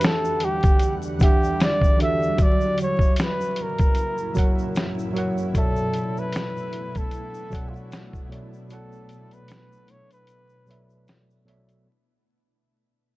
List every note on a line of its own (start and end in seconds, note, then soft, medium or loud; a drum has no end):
0.00 2.36 E2 medium
0.00 2.36 D3 medium
0.00 0.71 E3 medium
0.00 2.36 G3 medium
0.00 0.72 D4 medium
0.00 0.72 F#4 medium
0.00 0.73 G4 medium
0.00 0.73 E5 medium
0.00 2.36 F#5 medium
0.00 closed hi-hat medium
0.00 shaker medium
0.05 0.45 A4 loud
0.05 snare loud
0.25 shaker medium
0.40 0.96 G4 medium
0.40 closed hi-hat medium
0.63 kick medium
0.63 closed hi-hat soft
0.63 shaker soft
0.79 closed hi-hat medium
0.79 shaker medium
1.02 shaker soft
1.19 1.94 E3 medium
1.19 1.95 D4 medium
1.19 1.96 G4 medium
1.19 1.59 G4 medium
1.19 1.95 F#5 medium
1.19 kick loud
1.19 closed hi-hat medium
1.19 shaker medium
1.23 1.97 E5 medium
1.44 shaker soft
1.60 1.98 D5 loud
1.60 snare loud
1.60 closed hi-hat medium
1.60 shaker medium
1.82 kick loud
1.82 shaker medium
1.98 2.36 E3 medium
1.98 2.36 D4 medium
1.98 2.37 F#4 medium
1.98 2.38 G4 medium
1.98 closed hi-hat medium
2.02 2.38 A4 medium
2.02 2.44 E5 loud
2.23 shaker soft
2.37 5.52 F#2 medium
2.37 5.52 A#2 medium
2.37 5.52 C#3 medium
2.37 3.87 F#3 medium
2.37 11.83 E4 medium
2.37 3.88 F#4 medium
2.37 kick loud
2.37 closed hi-hat medium
2.37 shaker medium
2.41 2.80 D5 loud
2.41 3.89 E5 medium
2.61 shaker soft
2.78 closed hi-hat medium
2.78 shaker soft
2.82 3.17 C#5 loud
2.99 kick medium
2.99 shaker soft
3.16 snare loud
3.16 closed hi-hat medium
3.16 shaker medium
3.22 3.63 B4 loud
3.41 shaker medium
3.56 closed hi-hat medium
3.62 4.78 A#4 medium
3.78 kick medium
3.78 closed hi-hat soft
3.78 shaker soft
3.95 closed hi-hat medium
3.95 shaker medium
4.18 shaker medium
4.34 5.10 F#3 medium
4.34 5.11 F#4 medium
4.34 5.11 A#4 medium
4.34 5.12 C#5 medium
4.34 kick loud
4.34 closed hi-hat medium
4.34 shaker medium
4.38 5.12 F#5 medium
4.59 shaker soft
4.75 snare loud
4.75 closed hi-hat medium
4.75 shaker medium
4.99 shaker medium
5.13 5.52 F#3 medium
5.13 5.52 F#4 medium
5.13 5.53 A#4 medium
5.13 5.53 C#5 medium
5.13 closed hi-hat medium
5.18 5.54 F#5 medium
5.38 shaker soft
5.53 7.03 B2 medium
5.53 11.83 B2 medium
5.53 7.04 F#3 medium
5.53 11.83 A3 medium
5.53 11.83 B3 medium
5.53 11.83 D4 medium
5.53 7.04 A4 medium
5.53 7.05 C#5 medium
5.53 7.05 D5 medium
5.53 kick loud
5.53 closed hi-hat medium
5.53 shaker medium
5.58 6.20 A4 loud
5.58 7.05 E5 medium
5.76 shaker soft
5.94 closed hi-hat medium
5.94 shaker soft
6.17 6.99 B4 loud
6.17 shaker soft
6.32 snare loud
6.32 closed hi-hat medium
6.32 shaker medium
6.57 shaker medium
6.73 closed hi-hat medium
6.95 7.70 A4 loud
6.95 kick medium
6.95 closed hi-hat soft
6.95 shaker soft
7.11 closed hi-hat medium
7.11 shaker medium
7.34 shaker medium
7.50 8.26 B2 medium
7.50 8.26 F#3 medium
7.50 8.26 A4 medium
7.50 8.27 C#5 medium
7.50 8.27 D5 medium
7.50 kick medium
7.50 shaker medium
7.54 8.28 F#5 medium
7.54 closed hi-hat medium
7.69 7.77 F4 medium
7.75 8.32 F#4 medium
7.75 shaker soft
7.92 snare loud
7.92 closed hi-hat medium
7.92 shaker medium
8.13 kick medium
8.13 shaker medium
8.29 8.67 B2 medium
8.29 8.68 F#3 medium
8.29 8.68 A4 medium
8.29 8.69 C#5 medium
8.29 8.69 D5 medium
8.29 closed hi-hat medium
8.33 8.70 E5 medium
8.53 shaker soft
8.69 10.19 B2 medium
8.69 10.19 F#3 medium
8.69 10.20 A4 medium
8.69 9.35 A4 loud
8.69 10.20 C#5 medium
8.69 10.21 D5 medium
8.69 closed hi-hat medium
8.69 shaker medium
8.73 10.21 F#5 medium
8.92 shaker soft
9.09 closed hi-hat medium
9.09 shaker soft
9.31 9.92 B4 loud
9.31 closed hi-hat soft
9.31 shaker soft
9.48 snare loud
9.48 closed hi-hat medium
9.48 shaker medium
9.72 shaker medium
9.88 10.12 C#5 loud
9.88 closed hi-hat medium
10.11 11.26 B4 loud
10.11 closed hi-hat soft
10.11 shaker soft
10.27 closed hi-hat medium
10.27 shaker medium
10.49 shaker soft
10.67 11.42 B2 medium
10.67 11.42 F#3 medium
10.67 11.43 A4 medium
10.67 11.43 C#5 medium
10.67 11.44 D5 medium
10.67 shaker medium
10.71 11.44 E5 medium
10.71 closed hi-hat medium
10.90 shaker soft
11.07 snare loud
11.07 closed hi-hat medium
11.07 shaker medium
11.30 shaker medium
11.45 11.83 B2 medium
11.45 11.84 F#3 medium
11.45 11.84 A4 medium
11.45 11.85 C#5 medium
11.45 11.85 D5 medium
11.45 closed hi-hat medium
11.49 11.85 E5 medium
11.69 closed hi-hat soft
11.69 shaker soft